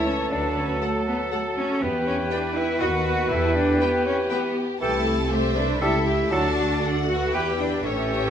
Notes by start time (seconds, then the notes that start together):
Already playing: C#2 E3 A3 E4 A4 C#5 A5
0.06 C#4 C#5
0.31 D2 F#3 D4 F#4 B4 D5
0.57 C#4 C#5
0.82 A3 A4 F#5
1.08 B3 B4
1.32 A3 A4 F#5
1.57 C#4 C#5
1.81 E2 E3 B3 G4 B4 G5
2.06 C#4 C#5
2.31 D4 G4 B4 D5 G5
2.56 E4 E5
2.80 D#2 D#3 F#4 B4 D#5 F#5
3.30 E2 E3 E4 G4 A4 E5 G5
3.56 D4 D5
3.81 B3 G4 B4 G5
4.06 C#4 C#5
4.30 B3 G4 B4 G5
4.81 C2 E3 A3 E4 G4 A4 G5 A5
5.07 G4
5.31 G4 C5 E5
5.56 D4 A4 B4 D5
5.81 C#2 G3 A3 E4 G4 A4 E5 A5
6.06 G4
6.31 D2 F#3 A3 D4 F#4 A4 D5 A5
6.83 A4 F#5
7.09 F#4 B4 F#5
7.33 E2 E3 B3 E4 G4 B4 G5
7.60 D4 D5
7.84 A1 E3 A3 C#4 G4 A4 C#5 E5 G5
8.12 C#5